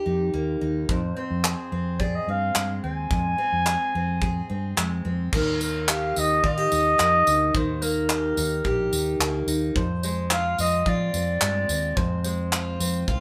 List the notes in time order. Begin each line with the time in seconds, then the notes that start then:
Already playing: D#3 A#3 G4
0.06 F2 D#4
0.34 D#2 A#3
0.61 D#2 D#4
0.89 F2 C5, kick
1.17 C4 C5
1.30 F2
1.44 G#4, clap
1.72 F2 C4
2.00 G#4 D5, kick
2.15 D#5
2.27 G2 C4 F5
2.55 G2 G#3, clap
2.84 D#2 C4 G#5
3.10 F2, kick
3.38 C4
3.52 F2
3.66 G#4, clap
3.95 F2 C4
4.22 G#4, kick
4.50 G2 C4
4.77 F2 G#3, clap
5.05 F2 C4
5.33 D#2 D#3 A#4, kick, crash
5.60 A#3 A#4, tambourine
5.88 G4 F5, clap
6.16 D#2 D#4 D#5, tambourine
6.44 D#3 F4 D#5, kick
6.57 G4
6.72 D#2 D#4, tambourine
6.98 F2 A#3, clap
7.27 D2 D#4, tambourine
7.55 D#2 D#3 C5, kick
7.82 A#3 A#4, tambourine
8.09 G4, clap
8.37 D#2 D#4, tambourine
8.64 A#1 G4, kick
8.92 D#2 D#4, tambourine
9.19 D2 A#3, clap
9.46 D#2 D#4, tambourine
9.76 F2 C5, kick
10.03 G#3 C5, tambourine
10.31 F4 F5, clap
10.58 F2 C4 D#5, tambourine
10.86 F3 F4 D5, kick
11.14 F2 C4, tambourine
11.41 G2 G#3, clap
11.69 D#2 C4, tambourine
11.97 F2 C5, kick
12.24 G#3 C5, tambourine
12.52 F4, clap
12.80 F2 C4, tambourine
13.08 C2 F4, kick